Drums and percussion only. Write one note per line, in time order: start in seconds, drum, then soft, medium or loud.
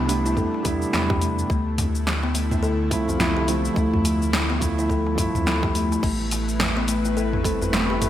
0.09 open hi-hat medium
0.09 cabasa medium
0.26 darbuka ka medium
0.26 cabasa soft
0.37 kick medium
0.37 mid tom medium
0.37 cabasa soft
0.54 darbuka ka medium
0.65 kick loud
0.65 open hi-hat medium
0.65 cabasa medium
0.82 cabasa soft
0.93 snare medium
0.93 cabasa soft
1.10 kick loud
1.10 mid tom medium
1.10 darbuka ka medium
1.10 darbuka dum medium
1.22 open hi-hat medium
1.22 cabasa medium
1.38 darbuka ka soft
1.38 cabasa soft
1.50 kick loud
1.50 cabasa soft
1.78 mid tom medium
1.78 open hi-hat medium
1.78 darbuka tek medium
1.78 cabasa medium
1.95 cabasa soft
2.07 snare loud
2.07 cabasa soft
2.23 darbuka tek medium
2.35 open hi-hat medium
2.35 cabasa medium
2.52 mid tom medium
2.52 cabasa soft
2.63 cabasa soft
2.91 kick medium
2.91 open hi-hat loud
2.91 cabasa medium
3.08 darbuka ka medium
3.08 darbuka dum medium
3.08 cabasa soft
3.20 snare medium
3.20 mid tom medium
3.20 cabasa soft
3.48 open hi-hat medium
3.48 cabasa medium
3.65 darbuka ka soft
3.65 cabasa soft
3.76 kick loud
3.76 cabasa soft
3.94 mid tom medium
3.94 darbuka dum medium
4.05 open hi-hat medium
4.05 darbuka ka soft
4.05 darbuka tek medium
4.05 cabasa medium
4.22 cabasa soft
4.33 snare loud
4.33 cabasa soft
4.50 darbuka tek medium
4.61 kick medium
4.61 mid tom medium
4.61 open hi-hat medium
4.61 cabasa medium
4.78 darbuka ka medium
4.78 cabasa soft
4.90 kick medium
4.90 cabasa soft
5.07 darbuka ka medium
5.18 kick loud
5.18 open hi-hat loud
5.18 cabasa medium
5.35 mid tom medium
5.35 cabasa soft
5.47 snare medium
5.47 cabasa soft
5.63 kick loud
5.63 darbuka ka medium
5.63 darbuka dum medium
5.75 open hi-hat medium
5.75 cabasa medium
5.92 darbuka ka soft
5.92 darbuka tek medium
5.92 cabasa soft
6.03 kick loud
6.03 crash medium
6.03 cabasa soft
6.31 open hi-hat loud
6.31 darbuka tek medium
6.31 cabasa medium
6.49 cabasa soft
6.60 snare loud
6.60 mid tom medium
6.60 cabasa soft
6.77 darbuka tek medium
6.88 open hi-hat medium
6.88 cabasa medium
7.05 cabasa soft
7.17 cabasa soft
7.33 mid tom medium
7.44 kick loud
7.44 open hi-hat medium
7.44 cabasa medium
7.62 darbuka ka medium
7.62 darbuka dum medium
7.62 cabasa soft
7.73 snare loud
7.73 cabasa soft
8.02 mid tom medium
8.02 open hi-hat medium
8.02 cabasa medium